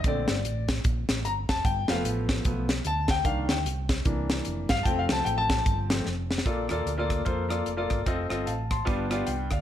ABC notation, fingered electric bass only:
X:1
M:4/4
L:1/8
Q:"Swing" 1/4=150
K:Bb
V:1 name="Fingered electric bass" clef=bass
B,,, G,,, A,,,2 B,,, A,,, G,,, F,,, | G,,, F,,, A,,,2 =B,,,2 D,,2 | C,, D,, C,,2 C,,2 F,,, G,,, | F,,, C,, A,,,2 G,,,2 F,,,2 |
B,,, E,, D,,2 F,,2 F,,, G,,, | F,,, G,,, A,,,2 G,,,2 C,, D,, |]